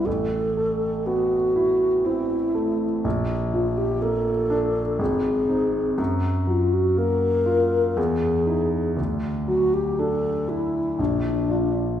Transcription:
<<
  \new Staff \with { instrumentName = "Alto flute" } { \time 3/4 \key a \dorian \tempo 4 = 60 a'4 fis'4 e'4 | r8 f'16 g'16 a'4 aes'4 | r8 eis'16 fis'16 ais'4 gis'4 | r8 fis'16 g'16 a'8 e'8 d'4 | }
  \new Staff \with { instrumentName = "Grand piano" } { \time 3/4 \key a \dorian a,,8 a8 b8 e'8 c'8 a8 | bes,,8 f8 bes8 d'8 aes,,8 <c' ees'>8 | fis,8 fis8 ais8 eis'8 e,8 <dis' e'>8 | d,8 fis8 d'8 e'8 bes,,8 <d' f'>8 | }
>>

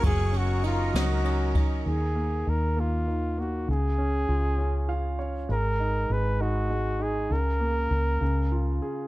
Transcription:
<<
  \new Staff \with { instrumentName = "Analog synth pad" } { \time 6/8 \key dis \minor \tempo 4. = 66 <ais' dis'' ais'' cis'''>2. | r2. | r2. | r2. |
r2. | }
  \new Staff \with { instrumentName = "Flugelhorn" } { \time 6/8 \key dis \minor gis'8 fis'8 eis'8 fis'4 r8 | gis'4 ais'8 eis'4 fis'8 | gis'2~ gis'8 r8 | ais'4 b'8 fis'4 gis'8 |
ais'2~ ais'8 r8 | }
  \new Staff \with { instrumentName = "Grand piano" } { \time 6/8 \key dis \minor fis8 cis'8 dis'8 fis8 cis'8 dis'8 | dis8 ais8 dis8 ais8 dis8 ais8 | cis8 cis'8 eis'8 cis'8 <eis' eis''>8 <cis' cis''>8 | gis8 dis'8 gis8 dis'8 gis8 dis'8 |
cis8 ais8 cis8 cis8 eis'8 gis'8 | }
  \new Staff \with { instrumentName = "Fingered electric bass" } { \clef bass \time 6/8 \key dis \minor fis,,4. cis,4. | dis,4 dis,2 | cis,4 cis,2 | gis,,4 gis,,2 |
cis,4 cis,8 cis,4 r8 | }
  \new DrumStaff \with { instrumentName = "Drums" } \drummode { \time 6/8 <bd cymr>8 cymr8 cymr8 <cymr sn>8 cymr8 <bd cymr>8 | r4. r4. | r4. r4. | r4. r4. |
r4. r4. | }
>>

